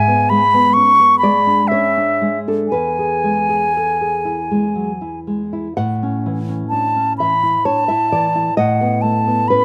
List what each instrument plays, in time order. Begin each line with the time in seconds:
Already playing: nylon-string guitar G#2 E5, flute G#5
0.07 nylon-string guitar B3
0.30 nylon-string guitar G#3, flute B5
0.54 nylon-string guitar B3
0.73 nylon-string guitar C#4, flute C#6
1.00 nylon-string guitar B3
1.19 flute B5
1.23 nylon-string guitar G#3 D5
1.47 nylon-string guitar D4
1.68 nylon-string guitar C#5, flute E5
1.72 nylon-string guitar C#4
1.97 nylon-string guitar D4
2.21 nylon-string guitar G#3
2.48 nylon-string guitar D4 A4
2.68 nylon-string guitar B4, flute G#5
2.73 nylon-string guitar E2
2.99 nylon-string guitar G#4
3.24 nylon-string guitar G#3
3.49 nylon-string guitar G#4
3.77 nylon-string guitar A4
4.01 nylon-string guitar G#4
4.25 nylon-string guitar E4
4.51 nylon-string guitar G#3
4.75 nylon-string guitar F#3
5.01 nylon-string guitar E4
5.27 nylon-string guitar G#3
5.53 nylon-string guitar E4
5.77 nylon-string guitar A2 F#5
6.03 nylon-string guitar C#4
6.26 nylon-string guitar E3
6.49 nylon-string guitar C#4
6.69 nylon-string guitar D4, flute A5
6.96 nylon-string guitar C#4
7.18 nylon-string guitar E3 E5, flute B5
7.43 nylon-string guitar E4
7.65 nylon-string guitar D4 C#5, flute A5
7.88 nylon-string guitar E4 E5
8.12 nylon-string guitar E3 D5
8.35 nylon-string guitar E4
8.57 nylon-string guitar A2 D#5, flute F#5
8.81 nylon-string guitar B3
9.02 nylon-string guitar A3, flute A5
9.27 nylon-string guitar B3
9.48 nylon-string guitar C#4 B4, flute B5